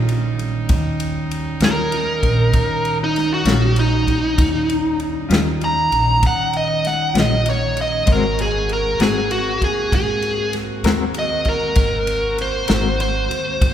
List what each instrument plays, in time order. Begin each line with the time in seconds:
Already playing: upright bass A#1, horn section G3 C#4 D#4
0.09 ride
0.39 ride
0.69 upright bass D#2, kick, ride
1.00 ride
1.31 ride
1.60 upright bass D#2, clean electric guitar D#3 G3 C#4 F4, lead electric guitar A#4, snare, ride
1.92 ride
2.23 upright bass A#1, kick, ride
2.53 upright bass D#3, kick, ride
2.85 ride
3.04 lead electric guitar D#4
3.16 snare, ride
3.34 lead electric guitar F#4
3.45 upright bass A#1, clean electric guitar D#3 G3 C#4 F4, snare, ride
3.76 lead electric guitar D#4, ride
4.07 kick, ride
4.38 upright bass D#2, kick, ride
4.70 ride
5.00 ride
5.29 upright bass D#2, clean electric guitar D#3 G3 C#4 F4, snare, ride
5.61 lead electric guitar A#5, ride
5.92 upright bass A#1, ride
6.23 upright bass D#3, lead electric guitar F#5, kick, ride
6.53 lead electric guitar D#5, ride
6.85 lead electric guitar F#5, snare, ride
7.14 upright bass A#1, clean electric guitar D#3 G3 C#4 F4, snare, ride
7.20 lead electric guitar D#5
7.46 ride
7.50 lead electric guitar C#5
7.77 ride
7.81 lead electric guitar D#5
8.06 upright bass G#1, clean electric guitar G#3 C4 F#4 A#4, horn section A#3 C4 F#4, kick, ride
8.12 lead electric guitar A#4
8.39 lead electric guitar G#4, ride
8.69 lead electric guitar A#4, ride
8.99 upright bass G#1, clean electric guitar G#3 C4 F#4 A#4, lead electric guitar G#4, snare, ride
9.31 lead electric guitar F#4, ride
9.62 upright bass D#2, lead electric guitar G#4, kick, ride
9.92 upright bass G#2, lead electric guitar G#4, kick, ride
10.22 ride
10.53 snare, ride
10.83 upright bass D#2, clean electric guitar G#3 C4 F#4 A#4, snare, ride
11.14 ride
11.19 lead electric guitar D#5
11.45 kick, ride
11.49 lead electric guitar A#4
11.75 upright bass G#1, kick, ride
12.07 ride
12.38 lead electric guitar C5, ride
12.68 upright bass G#1, clean electric guitar G#3 C4 F#4 A#4, snare, ride
13.00 lead electric guitar C5, ride
13.30 upright bass D#2, ride
13.61 upright bass G#2, kick, ride